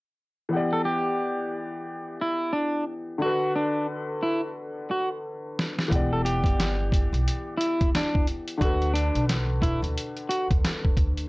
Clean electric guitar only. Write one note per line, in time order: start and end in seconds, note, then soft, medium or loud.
0.73 0.85 A4 medium
0.85 2.16 G4 medium
2.21 2.52 E4 medium
2.53 2.84 D4 medium
3.22 3.52 F#4 medium
3.56 3.86 D4 medium
4.23 4.40 E4 medium
4.91 5.08 F#4 medium
6.13 6.25 A4 medium
6.25 7.56 G4 medium
7.58 7.89 E4 medium
7.96 8.25 D4 medium
8.61 8.92 F#4 loud
8.94 9.25 D4 medium
9.62 9.80 E4 medium
10.29 10.47 F#4 medium